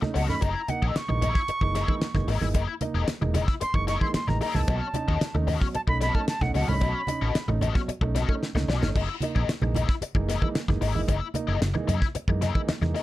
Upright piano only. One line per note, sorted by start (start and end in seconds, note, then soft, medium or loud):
0.02 0.15 A3 medium
0.02 0.15 C#4 medium
0.02 0.15 D#4 medium
0.16 0.29 B2 medium
0.16 0.29 F#3 medium
0.28 0.42 A3 medium
0.28 0.42 C#4 medium
0.28 0.42 D#4 medium
0.69 0.82 A#3 medium
0.69 0.82 D#4 medium
1.09 1.22 E3 medium
1.09 1.22 G#3 medium
1.09 1.22 A#3 medium
1.09 1.22 D#4 medium
1.61 1.75 E3 medium
1.61 1.75 G#3 medium
1.61 1.75 A#3 medium
1.61 1.75 D#4 medium
1.88 2.01 E3 medium
1.88 2.01 G#3 medium
1.88 2.02 A#3 medium
1.88 2.02 D#4 medium
2.14 2.28 E3 medium
2.14 2.28 G#3 medium
2.14 2.28 A#3 medium
2.14 2.28 D#4 medium
2.41 2.55 E3 medium
2.41 2.55 G#3 medium
2.41 2.55 A#3 medium
2.41 2.55 D#4 medium
2.81 2.95 A#3 medium
2.81 2.95 D#4 medium
3.21 3.35 E3 medium
3.21 3.35 G#3 medium
3.21 3.35 A#3 medium
3.21 3.35 D#4 medium
3.74 3.88 E3 medium
3.74 3.88 G#3 medium
3.74 3.88 A#3 medium
3.74 3.88 D#4 medium
4.01 4.15 E3 medium
4.01 4.15 G#3 medium
4.01 4.15 A#3 medium
4.01 4.15 D#4 medium
4.28 4.41 E3 medium
4.28 4.42 G#3 medium
4.28 4.42 A#3 medium
4.28 4.42 D#4 medium
4.54 4.68 E3 medium
4.54 4.68 G#3 medium
4.54 4.68 A#3 medium
4.54 4.68 D#4 medium
4.68 4.81 B2 medium
4.68 4.81 F#3 medium
4.94 5.08 C#4 medium
4.94 5.08 D#4 medium
5.34 5.48 A3 medium
5.34 5.48 C#4 medium
5.34 5.48 D#4 loud
5.61 5.75 B2 medium
5.61 5.75 F#3 medium
5.88 6.01 A3 medium
5.88 6.01 C#4 medium
5.88 6.02 D#4 medium
6.02 6.15 B2 medium
6.02 6.15 F#3 medium
6.15 6.28 A3 medium
6.15 6.28 C#4 medium
6.15 6.28 D#4 medium
6.42 6.55 A3 medium
6.42 6.55 C#4 medium
6.42 6.55 D#4 medium
6.55 6.68 B2 medium
6.55 6.68 F#3 medium
6.68 6.81 A3 medium
6.68 6.81 C#4 medium
6.68 6.82 D#4 medium
6.82 6.95 B2 medium
6.82 6.95 F#3 medium
7.08 7.21 C#4 medium
7.08 7.22 D#4 medium
7.48 7.61 A3 medium
7.48 7.61 C#4 medium
7.48 7.62 D#4 medium
7.75 7.88 B2 medium
7.75 7.88 F#3 medium
8.01 8.15 A3 medium
8.01 8.15 C#4 medium
8.01 8.15 D#4 medium
8.15 8.28 B2 medium
8.15 8.28 F#3 medium
8.28 8.41 A3 medium
8.28 8.42 C#4 medium
8.28 8.42 D#4 medium
8.55 8.68 A3 medium
8.55 8.68 C#4 medium
8.55 8.68 D#4 medium
8.68 8.82 B2 medium
8.68 8.82 F#3 medium
8.81 8.95 A3 medium
8.81 8.95 C#4 medium
8.81 8.95 D#4 medium
9.22 9.35 A#3 medium
9.22 9.35 D#4 medium
9.62 9.75 E3 medium
9.62 9.75 G#3 medium
9.62 9.75 A#3 medium
9.62 9.75 D#4 medium
10.15 10.28 E3 medium
10.15 10.28 G#3 medium
10.15 10.28 A#3 medium
10.15 10.29 D#4 medium
10.42 10.55 E3 medium
10.42 10.55 G#3 medium
10.42 10.55 A#3 medium
10.42 10.55 D#4 medium
10.68 10.82 E3 medium
10.68 10.82 G#3 medium
10.68 10.82 A#3 medium
10.68 10.82 D#4 medium
10.95 11.08 E3 medium
10.95 11.08 G#3 medium
10.95 11.08 A#3 medium
10.95 11.08 D#4 medium
11.35 11.48 A#3 medium
11.35 11.48 D#4 medium
11.75 11.88 E3 medium
11.75 11.88 G#3 medium
11.75 11.88 A#3 medium
11.75 11.88 D#4 medium
12.28 12.41 E3 medium
12.28 12.42 G#3 medium
12.28 12.42 A#3 medium
12.28 12.42 D#4 medium
12.55 12.68 E3 medium
12.55 12.68 G#3 medium
12.55 12.68 A#3 medium
12.55 12.68 D#4 medium
12.81 12.95 E3 medium
12.81 12.95 G#3 medium
12.81 12.95 A#3 medium
12.81 12.95 D#4 medium